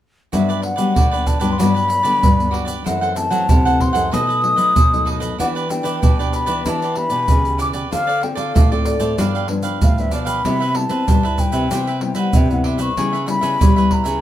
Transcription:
0.32 G2 F#3 B3 D4 F#4 G4 B4 D5 E5, pandeiro, shaker, surdo
0.49 G4 B4 D5, pandeiro, shaker
0.62 F#5, muted cavaquinho stroke, pandeiro
0.76 F#3 G3 B3 D4 G4 B4 D5, pandeiro, shaker
0.95 D3 F#4 G4 B4 D5, pandeiro, shaker, surdo
1.11 F#3 B3 D4 G4 B4 D5, pandeiro, shaker
1.27 A5, pandeiro, shaker, surdo
1.40 G2 F#3 B3 D4 G4 B4 D5, pandeiro, shaker
1.52 C6
1.58 G2 F#3 B3 D4 F#4 G4 B4 D5 B5, pandeiro, shaker, surdo
1.74 G4 B4 D5, pandeiro, shaker
1.88 muted cavaquinho stroke, pandeiro, shaker
2.03 D3 F#3 B3 D4 G4 B4 D5, pandeiro, shaker
2.23 G2 D3, pandeiro, shaker, surdo
2.39 F#3 B3 D4, pandeiro, shaker
2.51 F#4 G4 B4 D5, pandeiro
2.65 G4 B4 D5, pandeiro, shaker
2.84 F#2 E3 A3 C4 E4 A4 C5 F#5, pandeiro, shaker, surdo
3.01 A4 C5 F#5, pandeiro, shaker
3.16 E3 A3 C4 A5, muted cavaquinho stroke, pandeiro, shaker
3.30 F#3 A4 C5 F#5, pandeiro, shaker
3.49 F#2 C3 E4 A4 C5 F#5, pandeiro, shaker, surdo
3.65 E3 A3 C4 A4 C5 F#5, pandeiro, shaker
3.81 C6, pandeiro, surdo
3.93 F#2 A4 C5 F#5, pandeiro, shaker
4.11 B2 F#3 A3 D#4 A4 B4 D#5 D#6, pandeiro, shaker, surdo
4.27 A4 B4 D#5, pandeiro, shaker
4.41 F#3 A3 D#4, muted cavaquinho stroke, pandeiro
4.56 F#3 A4 B4 D#5, pandeiro, shaker
4.76 F#2 B2, pandeiro, shaker, surdo
4.93 F#3 A3 D#4, pandeiro, shaker
5.05 D#4 A4 B4 D#5, pandeiro
5.20 A4 B4 D#5, pandeiro, shaker
5.38 E3 B3 D4 E4 G4 B4 D5 F#5, pandeiro, shaker, surdo
5.55 G4 B4 D5, pandeiro, shaker
5.69 B3 D4 G4 G5, muted cavaquinho stroke, pandeiro, shaker
5.83 E3 G4 B4 D5, pandeiro, shaker
6.02 B2 E4 G4 B4 D5, pandeiro, shaker, surdo
6.18 B3 D4 G4 B4 D5, pandeiro, shaker
6.33 B5, pandeiro, shaker
6.46 E3 G4 B4 D5, pandeiro, shaker
6.65 E3 B3 D4 E4 G4 B4 D5 A5, pandeiro, shaker, surdo
6.82 G4 B4 D5, pandeiro, shaker
6.95 B3 D4 G4 B5, muted cavaquinho stroke, pandeiro
7.10 B2 G4 B4 D5, pandeiro, shaker
7.28 B2 C#3, pandeiro, shaker, surdo
7.45 B3 G4, pandeiro, shaker
7.58 E4 G4 B4 D5 D6, pandeiro, shaker
7.73 G4 B4 D5, pandeiro, shaker
7.91 D3 C4 F4 A4 C5 D5 F5, pandeiro, shaker, surdo
8.07 A4 C5 D5, pandeiro, shaker
8.21 C4 F4 A4 G5, muted cavaquinho stroke, pandeiro
8.35 D3 A4 C5 D5 F5, pandeiro, shaker
8.54 A2 F4 A4 C5 D5, pandeiro, shaker, surdo
8.71 C4 F4 A4 C5 D5, pandeiro, shaker
8.85 D5, pandeiro, shaker
8.99 A2 A4 C5 D5, pandeiro, shaker
9.17 G2 F3 B3 D4 G4 B4 F5, pandeiro, shaker, surdo
9.35 G4 B4 F5, pandeiro, shaker
9.48 G2 F3 B3 D4, muted cavaquinho stroke, pandeiro
9.63 G4 B4 F5, pandeiro, shaker
9.81 A2 D3 F5, pandeiro, shaker, surdo
9.98 F3 B3 D4 E5, pandeiro, shaker
10.11 B2 D4 G4 B4 D5 F5, pandeiro, shaker
10.25 G4 B4 F5 B5, pandeiro, shaker
10.45 C3 G3 B3 E4 G4 B4 C5 E5, pandeiro, shaker, surdo
10.60 B4 C5 E5, pandeiro, shaker
10.74 G3 B3 E4 A5, muted cavaquinho stroke, pandeiro
10.89 C4 B4 C5 E5, pandeiro, shaker
11.07 G2 G3 G4 B4 C5 E5, pandeiro, shaker, surdo
11.23 G3 E4 B4 C5 E5, pandeiro, shaker
11.38 G5, pandeiro, shaker, surdo
11.52 C3 B4 C5 E5, pandeiro, shaker
11.71 C3 G3 B3 E4 G4 B4 C5 E5, pandeiro, shaker, surdo
11.87 B4 C5 E5, pandeiro, shaker
12.01 G3 B3 E4, muted cavaquinho stroke, pandeiro
12.15 G3 B4 C5 E5 F#5, pandeiro, shaker
12.33 G2 C3 G5, pandeiro, shaker, surdo
12.50 G3 B3 E4 F#5, pandeiro, shaker
12.64 G4 B4 C5 E5, pandeiro
12.78 B4 C5 E5 C#6, pandeiro, shaker
12.97 C#3 G3 B3 E4 G4 B4 C#5 E5, pandeiro, shaker, surdo
13.13 B4 C#5 E5, pandeiro, shaker
13.26 G3 B3 E4 B5, muted cavaquinho stroke, pandeiro, shaker
13.41 C#3 B4 C#5 E5, pandeiro, shaker
13.59 C#3 G3 G4 B4 C#5 E5, pandeiro, shaker, surdo
13.76 G3 B3 E4 B4 C#5 E5, pandeiro, shaker
13.91 A#5, pandeiro, surdo
14.04 C#3 B4 C#5 E5, pandeiro, shaker

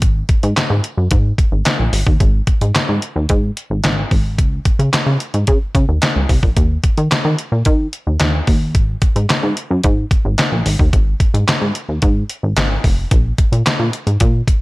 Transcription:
0.02 G#1, kick, closed hi-hat
0.29 kick, closed hi-hat
0.43 G#2, closed hi-hat
0.57 snare, clap, closed hi-hat
0.70 G#2
0.84 closed hi-hat
0.97 F#2
1.11 G#2, kick, closed hi-hat
1.38 kick, closed hi-hat
1.52 G#1
1.65 snare, clap, closed hi-hat
1.79 A#1
1.93 G#1, open hi-hat
2.07 D#2, kick
2.20 G#1, kick, closed hi-hat
2.47 kick, closed hi-hat
2.61 G#2, closed hi-hat
2.75 snare, clap, closed hi-hat
2.89 G#2
3.02 closed hi-hat
3.16 D#2
3.29 G#2, kick, closed hi-hat
3.57 closed hi-hat
3.70 G#1
3.84 G#1, snare, clap, closed hi-hat
4.11 G#1, kick, open hi-hat
4.38 C#2, kick, closed hi-hat
4.65 kick, closed hi-hat
4.79 C#3, closed hi-hat
4.93 C#3, snare, clap, closed hi-hat
5.06 C#3
5.20 closed hi-hat
5.34 G#2, closed hi-hat
5.47 C#3, kick, closed hi-hat
5.75 C#3, kick, closed hi-hat
5.88 D#2
6.02 snare, clap, closed hi-hat
6.16 C#2
6.29 C2, kick, open hi-hat
6.43 A#1, kick
6.57 D#2, kick, closed hi-hat
6.84 kick, closed hi-hat
6.97 D#3, closed hi-hat
7.11 D#3, snare, clap, closed hi-hat
7.25 D#3
7.39 closed hi-hat
7.52 A#2
7.65 D#3, kick, closed hi-hat
7.93 closed hi-hat
8.07 D#2
8.20 D#2, snare, clap, closed hi-hat
8.47 D#2, kick, open hi-hat
8.75 G#1, kick, closed hi-hat
9.02 kick, closed hi-hat
9.16 G#2, closed hi-hat
9.29 G#2, snare, clap, closed hi-hat
9.43 G#2
9.57 closed hi-hat
9.70 F#2
9.84 G#2, kick, closed hi-hat
10.11 kick, closed hi-hat
10.25 G#1
10.38 snare, clap, closed hi-hat
10.52 A#1
10.66 G#1, open hi-hat
10.79 D#2, kick
10.93 G#1, kick, closed hi-hat
11.20 kick, closed hi-hat
11.34 G#2, closed hi-hat
11.48 G#2, snare, clap, closed hi-hat
11.61 G#2
11.75 closed hi-hat
11.89 D#2
12.02 G#2, kick, closed hi-hat
12.29 closed hi-hat
12.43 G#1
12.56 G#1, snare, clap, closed hi-hat
12.84 F1, kick, open hi-hat
13.11 A#1, kick, closed hi-hat
13.38 kick, closed hi-hat
13.52 A#2, closed hi-hat
13.66 A#2, snare, clap, closed hi-hat
13.79 A#2
13.93 closed hi-hat
14.07 G#2, closed hi-hat
14.20 A#2, kick, closed hi-hat
14.48 kick, closed hi-hat

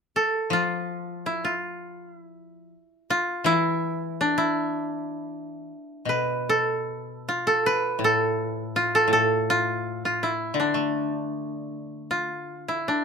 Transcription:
0.16 A4
0.50 F3 F4
1.26 E4
1.45 F4
2.17 E4
3.10 F4
3.44 E3 E4
4.21 D4
4.38 E4
6.05 B2 B4
6.49 A4
7.29 F4
7.47 A4
7.66 B4
7.99 A2
8.04 A4
8.76 F4
8.95 A4
9.08 A2
9.13 A4
9.50 F4
10.05 F4
10.23 E4
10.54 D3
10.60 D4
10.74 A3
12.11 F4
12.68 E4
12.88 D4

